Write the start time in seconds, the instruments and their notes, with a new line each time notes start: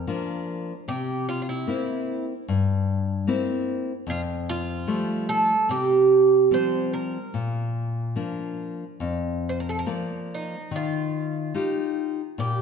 Already playing: bouzouki A#4
0.07 nylon-string guitar F3 A#3 D4
0.88 nylon-string guitar C3, bouzouki G4
1.29 bouzouki F4
1.42 bouzouki F4
1.49 bouzouki E4
1.67 nylon-string guitar A#3 C4 E4
2.48 nylon-string guitar G2
3.27 nylon-string guitar A#3 C4 E4
4.07 nylon-string guitar F2, bouzouki F4
4.49 bouzouki F4
4.87 nylon-string guitar F3 G3 A3
5.29 bouzouki A4
5.69 nylon-string guitar C3, bouzouki G4
6.51 nylon-string guitar F3 G3 C4, bouzouki C5
6.93 bouzouki A#4
7.34 nylon-string guitar A#2
8.16 nylon-string guitar F3 A#3 D4
9.00 nylon-string guitar F2
9.49 bouzouki C5
9.60 bouzouki A#4
9.69 bouzouki A4
9.79 bouzouki A#4
9.86 nylon-string guitar F3 A#3 D5
10.35 bouzouki D#4
10.71 nylon-string guitar D#3
10.76 bouzouki F4
11.54 nylon-string guitar D#4 F4 G4
12.38 nylon-string guitar A#2, bouzouki G4